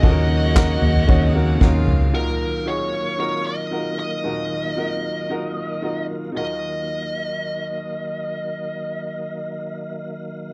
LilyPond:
<<
  \new Staff \with { instrumentName = "Lead electric guitar" } { \time 4/4 \key ees \minor \tempo 4 = 114 ees''2~ ees''8 r4. | bes'4 des''4 des''8 ees''4 ees''8~ | ees''2.~ ees''8 r8 | ees''1~ |
ees''1 | }
  \new Staff \with { instrumentName = "Violin section" } { \time 4/4 \key ees \minor <ges' ges''>2. <f' f''>4 | r1 | r1 | r1 |
r1 | }
  \new Staff \with { instrumentName = "Upright piano" } { \time 4/4 \key ees \minor <bes des' ees' ges' a' bes'>8 r8 <bes des' ees' ges' bes'>8 r8 <bes des' ees' ges' des''>8 <bes des' ees' ges' bes'>8 <bes des' ees' ges' bes'>8 r8 | <ees' f' ges' bes'>8 r8 <ees' f' ges' aes'>8 r8 <ees' f' ges' bes'>8 r8 <ees' f' ges' bes'>8 r8 | <ees' f' ges' bes'>8 r8 <ees' f' ges' bes'>8 r8 <ees' f' ges' bes'>8 r8 <ees' f' ges' bes'>8 r8 | <ees' f' ges' bes'>1~ |
<ees' f' ges' bes'>1 | }
  \new Staff \with { instrumentName = "Upright piano" } { \clef bass \time 4/4 \key ees \minor bes,4. r2 r8 | <ees, bes,>1 | <ees, bes,>1 | ees,1~ |
ees,1 | }
  \new Staff \with { instrumentName = "Tonewheel organ" } { \time 4/4 \key ees \minor <des ges bes ees' aes'>1 | <ees ges bes bes' f''>1~ | <ees ges bes bes' f''>1 | <ees ges bes bes' f''>1~ |
<ees ges bes bes' f''>1 | }
  \new Staff \with { instrumentName = "Fingered electric bass" } { \clef bass \time 4/4 \key ees \minor ees,4. ees,8 ees,4 ees,8 des,8 | r1 | r1 | r1 |
r1 | }
  \new DrumStaff \with { instrumentName = "Drums" } \drummode { \time 4/4 <bd cymr>8 cymr8 <hc bd cymr sn>8 <cymr tomfh>16 tomfh16 <bd cymr>16 cymr16 cymr8 <bd sn>8 toml16 tomfh16 | r4 r4 r4 r4 | r4 r4 r4 r4 | r4 r4 r4 r4 |
r4 r4 r4 r4 | }
>>